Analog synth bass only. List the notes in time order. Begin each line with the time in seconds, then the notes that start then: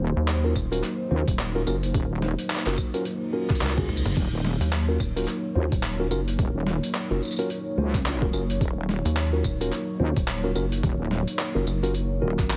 0.17 D#2
0.56 D#1
1.28 D#1
1.67 F#1
2.66 F#1
3.61 C#2
4.05 F#1
4.60 D#2
5.00 D#1
5.72 D#1
6.11 F#1
7.11 F#1
8.33 F#1
9.05 D#2
9.44 D#1
10.16 D#1
10.55 F#1
11.55 F#1
11.67 F#1
12.39 G#1